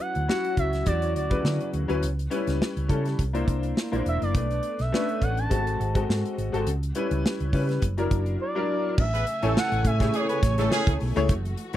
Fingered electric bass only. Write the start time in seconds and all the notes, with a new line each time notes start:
0.16 D2
0.57 C#2
0.87 E2
1.15 D2
1.44 D3
1.73 D2
1.89 D2
2.03 C#2
2.47 C#2
2.77 C#2
2.90 C#3
3.19 C2
3.48 C2
3.93 A#1
4.06 E1
4.22 F#1
4.35 B1
4.80 B1
5.22 A1
5.51 G#1
5.80 G#1
6.09 G#2
6.38 G#1
6.54 G#1
6.67 C#2
7.11 C#2
7.41 C#2
7.53 C#3
7.82 F#1
8.11 F#1
8.98 A1
9.43 A1
9.72 A1
9.85 A2
10.43 A1
10.87 C#2
11.01 B1
11.16 C#2
11.29 F#1